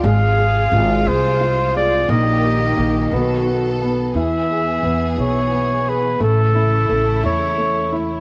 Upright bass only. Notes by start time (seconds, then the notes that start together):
0.04 G#1
0.72 G#1
1.06 C2
2.09 A#1
2.77 A#1
3.12 B1
4.14 E2
4.83 E2
5.17 B1
6.20 A1
6.89 A1
7.23 E2